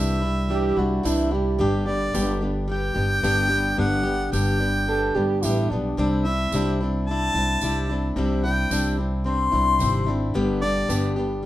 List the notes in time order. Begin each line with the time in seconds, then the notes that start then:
Already playing: C2 C3 E3 G3 D4 E4 E5
0.22 G3 D4 E4
0.49 E3 G3 D4 E4 G4
0.77 C2 G3 D4 E4 F#4
1.03 C2 C3 E3 G3 D4 E4, tambourine
1.31 G3 D4 E4 G4
1.58 G1 G2 D3 G3 B3 D4 G4
1.86 G3 B3 D4 G4 D5
2.13 G1 G2 D3 G3 B3 D4 G4, tambourine
2.41 G3 B3 D4 G4
2.68 G3 B3 D4 G4 G5
2.95 G1 G3 B3 D4 G4
3.22 G1 G2 D3 G3 B3 D4 G4, tambourine
3.49 G3 B3 D4 G4
3.77 G1 G2 D3 G3 B3 D4 G4 F#5
4.03 G3 B3 D4 G4
4.32 G1 G2 D3 G3 B3 D4 G4 G5, tambourine
4.59 G3 B3 D4 G4
4.87 G3 B3 D4 G4 A4
5.15 G1 G3 B3 D4 G4
5.43 A1 G2 D3 G3 B3 D4 E4 G4, tambourine
5.70 B1 G3 B3 D4 G4
5.97 C2 C3 G3 C4 D4 E4
6.25 C4 D4 E4 E5
6.52 C2 C3 G3 C4 D4, tambourine
6.56 E4
6.80 C4 D4 E4
7.07 G3 C4 D4 A5
7.11 E4
7.34 C2 C4 D4 E4
7.61 C2 C3 G3 C4 D4 E4, tambourine
7.89 C4 D4 E4
8.16 C2 C3 G3 C4 D4 E4
8.44 C4 D4 E4 G5
8.71 C2 C3 G3 C4 D4 E4, tambourine
8.97 C4 D4 E4
9.24 G3 C4 D4 E4 C6
9.52 C2 C4 D4 E4
9.79 G#1 C3 G3 C4 D4 E4, tambourine
10.06 C4 D4 E4
10.34 G1 G2 D3 G3 B3 D4 G4
10.62 G3 D4 G4 D5
10.88 G1 G2 D3 G3 B3 D4 G4, tambourine
11.16 G3 B3 D4 G4
11.43 G3